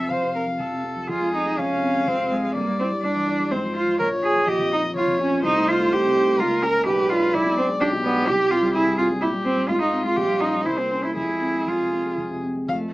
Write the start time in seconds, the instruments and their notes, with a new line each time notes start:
Already playing: grand piano F2 C3 F3 C4, violin E5
0.10 grand piano F2, cello C5, violin F5
0.23 grand piano C3
0.35 grand piano C4, cello A#4
0.47 grand piano F3
0.59 grand piano F2, cello A4
0.72 grand piano C3
0.84 grand piano C4
0.96 grand piano F3
1.09 grand piano F2, cello F4, violin G#4
1.21 grand piano G#3
1.33 grand piano C4, cello D#4
1.46 grand piano G#3
1.58 grand piano F2, cello C#4, violin F5
1.71 grand piano C3
1.83 grand piano C4
1.95 grand piano G#3
2.07 grand piano F2, cello C4
2.20 grand piano C3
2.31 cello G#3, grand piano C4
2.44 grand piano G#3
2.55 grand piano G2, cello A#3, violin D5
2.68 grand piano G3
2.79 cello C4, grand piano E4
2.91 grand piano G3
3.03 grand piano G2, cello D4
3.15 grand piano E3
3.27 grand piano E4
3.39 grand piano G3
3.51 grand piano G#2, cello C4, violin C5
3.64 grand piano F3
3.75 cello F4, grand piano F4
3.88 grand piano F3
3.99 grand piano A#1, cello A#4, violin C#5
4.12 grand piano F3
4.23 grand piano F4, cello G#4
4.35 grand piano F3
4.47 grand piano A#1, cello G4, violin D#5
4.59 grand piano F2
4.72 cello D#4, grand piano F4
4.83 grand piano F3
4.95 grand piano A#1, cello F4, violin C#5
5.08 grand piano F2
5.19 cello C#4, grand piano F4
5.31 grand piano F3
5.43 grand piano C2, cello D#4, violin C5
5.56 grand piano A3
5.68 grand piano D#4, cello F4
5.79 grand piano A3
5.92 grand piano C2, cello G4
6.03 grand piano C3
6.15 grand piano D#4
6.27 grand piano A3
6.39 grand piano C#2, cello F4, violin A#4
6.50 grand piano A#3
6.62 grand piano C#4, cello A#4
6.75 grand piano A#3
6.86 grand piano B1, cello G4, violin B4
6.98 grand piano G#3
7.10 grand piano D4, cello F4
7.22 grand piano G#3
7.33 grand piano B1, cello E4, violin D5
7.46 grand piano B2
7.57 cello C4, grand piano D4
7.69 grand piano G#3
7.80 grand piano B1, cello D4, violin G4
7.93 grand piano B2
8.04 cello B3, grand piano D4
8.16 grand piano G#3
8.27 grand piano C2, cello G4
8.39 grand piano G3
8.50 grand piano C4, cello F4
8.63 grand piano G3
8.73 grand piano C2, cello E4, violin G#4
8.86 grand piano G2
8.98 grand piano C4, cello F4
9.11 grand piano G3
9.21 grand piano A#2, cello E4, violin G4
9.34 grand piano G3
9.45 grand piano C4, cello C4
9.57 grand piano G3
9.69 grand piano G#2, cello F4, violin F4
9.81 grand piano G#3, cello D#4
9.93 grand piano C4
10.05 grand piano G#3, cello F4
10.16 grand piano A#1, cello G4
10.29 grand piano G3
10.40 grand piano C#4, cello D#4
10.53 grand piano G3
10.65 grand piano C2, cello E4, violin C5
10.78 grand piano A#3, cello C4
10.91 grand piano C#4
11.03 grand piano A#3, cello E4
11.16 grand piano F2, cello E4, violin G#4
11.29 grand piano G#3
11.42 grand piano C4
11.54 grand piano G#3
11.67 grand piano F2, cello F4
11.80 grand piano C3
11.92 grand piano C4
12.05 grand piano G#3
12.17 grand piano F2
12.31 grand piano C3
12.43 grand piano C4
12.56 grand piano G#3
12.68 grand piano F2, cello A3, violin F5
12.81 grand piano A3